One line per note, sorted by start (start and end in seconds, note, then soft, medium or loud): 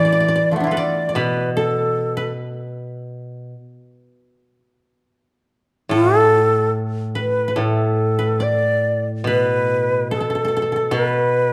0.00 0.37 A2 soft
0.00 1.95 E3 soft
0.00 0.66 A4 medium
0.00 0.33 B4 soft
0.00 0.51 D5 medium
0.00 0.57 E5 medium
0.05 0.12 D5 soft
0.12 0.20 D5 soft
0.20 0.28 D5 soft
0.28 0.35 D5 soft
0.36 0.77 D5 soft
0.51 0.70 F3 soft
0.51 3.41 A3 soft
0.56 3.25 B3 soft
0.60 3.03 D4 soft
0.60 2.90 E4 soft
0.67 2.85 F4 soft
0.71 1.56 A4 soft
0.71 1.15 B4 soft
0.71 1.13 D5 medium
0.77 1.08 D5 medium
1.09 2.69 D5 soft
1.15 3.52 B2 soft
1.15 2.16 B4 medium
1.15 1.53 B4 medium
1.55 2.31 A4 medium
1.55 3.47 A4 medium
2.17 3.94 B4 soft
5.89 7.55 A2 soft
5.89 6.18 F4 medium
5.89 7.55 A4 medium
6.18 6.71 A4 medium
7.15 7.47 B4 medium
7.15 7.50 B4 medium
7.48 8.18 B4 soft
7.48 7.62 B4 soft
7.56 10.10 A2 soft
7.56 9.46 A4 soft
7.61 8.44 A4 medium
8.19 9.27 B4 soft
8.40 10.00 D5 soft
8.40 9.06 D5 medium
9.24 10.90 B2 soft
9.24 10.91 B4 medium
9.30 10.08 B4 medium
10.11 10.20 A4 soft
10.11 10.92 A4 medium
10.21 10.30 A4 soft
10.30 10.35 A4 soft
10.35 10.44 A4 soft
10.45 10.48 A4 soft
10.45 10.56 A4 soft
10.57 10.62 A4 soft
10.62 10.72 A4 soft
10.72 10.76 A4 soft
10.72 10.91 A4 soft
10.91 11.53 B2 soft
10.91 11.09 A4 medium
10.95 11.53 B4 medium
11.09 11.53 B4 medium